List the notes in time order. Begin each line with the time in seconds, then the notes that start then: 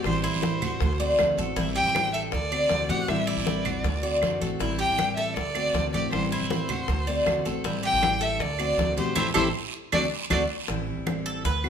Already playing: G4
0.04 A1 E3 G3 C4 E4 C5, high bongo, high conga, long guiro, claves
0.23 E4 C5, high bongo, high conga
0.33 A1
0.43 E3 G3 C4 E4, high bongo, high conga, short guiro
0.61 F#4, high bongo, high conga, low conga, short guiro, claves
0.81 D2, muted steel-string acoustic guitar stroke, high bongo, high conga, low conga, long guiro
1.00 A3 C4 F#4 D5, high bongo, high conga
1.19 D2 D3 A3 C4 F#4, high bongo, low bongo, high conga, short guiro, claves
1.37 A1 A3 C4 F#4 A4, high conga, short guiro
1.56 A1 E3 G3 C4 E4, high bongo, high conga, long guiro
1.75 G4 G5, high conga
1.85 A1
1.95 E3 G3 C4 E4, high bongo, high conga, short guiro, claves
2.13 A4 E5, high bongo, short guiro
2.32 D2 D5, muted steel-string acoustic guitar stroke, high bongo, high conga, long guiro
2.51 A3 C4 F#4 D5, high bongo, high conga, claves
2.69 D2 D3 A3 C4 F#4, high bongo, low bongo, high conga, short guiro
2.89 A1 A3 C4 F#4 G4 F#5, high bongo, high conga, short guiro
3.08 A1 E3 G3 C4 E4 E5, high bongo, high conga, long guiro, claves
3.27 E4 D5, high bongo, high conga
3.37 A1
3.47 E3 G3 C4 E4, high bongo, high conga, short guiro
3.65 F#4, high bongo, high conga, low conga, short guiro, claves
3.83 D2, muted steel-string acoustic guitar stroke, high bongo, high conga, low conga, long guiro
4.03 A3 C4 F#4 D5, high bongo, high conga
4.22 F#1 D3 A3 C4 F#4, high bongo, low bongo, high conga, short guiro, claves
4.41 A1 A3 C4 F#4 A4, high conga, short guiro
4.59 A1 E3 G3 C4 E4, high bongo, long guiro
4.79 G4 G5, high conga
4.89 A1
4.98 E3 G3 C4 E4, high bongo, high conga, short guiro, claves
5.17 A4 E5, high bongo, short guiro
5.36 D2 D5, muted steel-string acoustic guitar stroke, high bongo, high conga, long guiro
5.55 A3 C4 F#4 D5, high bongo, high conga, claves
5.74 D2 D3 A3 C4 F#4, high bongo, low bongo, high conga, short guiro
5.93 A1 A3 C4 F#4 G4 D5, high bongo, high conga, short guiro
6.11 A1 E3 G3 C4 E4 C5, high bongo, high conga, long guiro, claves
6.32 E4 C5, high bongo, high conga
6.41 A1
6.50 E3 G3 C4 E4, high bongo, high conga, short guiro
6.69 F#4, high conga, low conga, short guiro, claves
6.88 D2, muted steel-string acoustic guitar stroke, high bongo, high conga, low conga, long guiro
7.07 A3 C4 F#4 D5, high bongo, high conga
7.26 D2 D3 A3 C4 F#4, high bongo, low bongo, high conga, short guiro, claves
7.45 A1 A3 C4 F#4 A4, high conga, short guiro
7.64 A1 E3 G3 C4 E4, high bongo, long guiro
7.83 G4 G5, high conga
7.93 A1
8.03 E3 G3 C4 E4, high bongo, high conga, short guiro, claves
8.21 A4 E5, high bongo, short guiro
8.39 D2 D5, muted steel-string acoustic guitar stroke, high bongo, high conga, long guiro
8.59 A3 C4 F#4 D5, high bongo, high conga, claves
8.77 D2 D3 A3 C4 F#4, high bongo, low bongo, high conga, short guiro
8.97 B1 A3 C4 F#4 G4 C5, high bongo, high conga, short guiro
9.15 A1 A3 C4 E4 G4 A4 C5, low bongo, high conga, long guiro, claves
9.34 A1 A3 C4 E4 G4 A4 C5, low bongo, high conga, long guiro, claves
9.92 D2 A3 C4 D4 F#4 A4 D5, low bongo, high conga, long guiro, claves
10.30 D2 A3 C4 D4 F#4 A4 D5, low bongo, high conga, long guiro, claves
10.68 A1 E3 G3 C4 E4, high bongo, high conga
10.87 high conga
10.97 A1
11.06 E3 G3 C4 E4, high bongo, high conga, claves
11.26 A4, high bongo
11.44 D2 B4, muted steel-string acoustic guitar stroke, high bongo, high conga
11.64 A3 C4 F#4, high bongo, high conga, claves